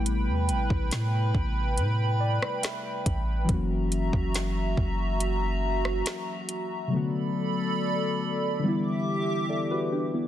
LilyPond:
<<
  \new Staff \with { instrumentName = "Analog synth pad" } { \time 4/4 \key a \dorian \tempo 4 = 70 <b' g'' b''>1 | <fis' e'' ais''>1 | <a' d'' b''>2 <g' e'' d'''>2 | }
  \new Staff \with { instrumentName = "Synth keys" } { \time 4/4 \key a \dorian << { r2 r8 d''8 e''8 b''8 | r1 | r2. <a' d''>16 <fis' b'>16 <d' g'>16 <b e'>16 | } \\ { <c g a b e'>2.~ <c g a b e'>8 r8 | <e fis a ais cis' fis'>1 | <c d fis a b fis'>2 <d e g b e'>2 | } >> }
  \new Staff \with { instrumentName = "808-style bass" } { \clef bass \time 4/4 \key a \dorian a,,16 e,16 a,,16 a,,16 a,8 a,,8 a,8. r8. a,,8 | fis,,8. fis,,8. fis,,4. r4 | r1 | }
  \new DrumStaff \with { instrumentName = "Drums" } \drummode { \time 4/4 hh8 hh16 bd16 <hh sn>8 bd8 hh8. ss16 <hh sn>8 <hh bd>8 | <hh bd>8 hh16 bd16 <hh sn>8 bd8 hh8. ss16 <hh sn>8 hh8 | r4 r4 r4 r4 | }
>>